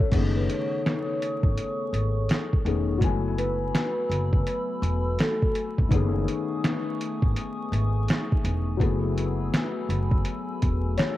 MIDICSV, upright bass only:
0, 0, Header, 1, 2, 480
1, 0, Start_track
1, 0, Tempo, 722892
1, 82, Time_signature, 4, 2, 24, 8
1, 7419, End_track
2, 0, Start_track
2, 0, Title_t, "Upright bass"
2, 0, Program_c, 0, 32
2, 80, Note_on_c, 0, 30, 115
2, 307, Note_off_c, 0, 30, 0
2, 951, Note_on_c, 0, 32, 81
2, 1034, Note_off_c, 0, 32, 0
2, 1280, Note_on_c, 0, 32, 87
2, 1507, Note_off_c, 0, 32, 0
2, 1759, Note_on_c, 0, 28, 96
2, 2001, Note_off_c, 0, 28, 0
2, 2001, Note_on_c, 0, 30, 90
2, 2455, Note_off_c, 0, 30, 0
2, 2720, Note_on_c, 0, 30, 88
2, 2947, Note_off_c, 0, 30, 0
2, 3201, Note_on_c, 0, 28, 105
2, 3427, Note_off_c, 0, 28, 0
2, 3842, Note_on_c, 0, 28, 90
2, 3920, Note_off_c, 0, 28, 0
2, 3925, Note_on_c, 0, 30, 113
2, 4149, Note_off_c, 0, 30, 0
2, 4798, Note_on_c, 0, 32, 82
2, 4878, Note_off_c, 0, 32, 0
2, 5125, Note_on_c, 0, 32, 96
2, 5350, Note_off_c, 0, 32, 0
2, 5606, Note_on_c, 0, 28, 92
2, 5846, Note_off_c, 0, 28, 0
2, 5846, Note_on_c, 0, 30, 92
2, 6297, Note_off_c, 0, 30, 0
2, 6566, Note_on_c, 0, 30, 91
2, 6790, Note_off_c, 0, 30, 0
2, 7057, Note_on_c, 0, 28, 95
2, 7276, Note_off_c, 0, 28, 0
2, 7419, End_track
0, 0, End_of_file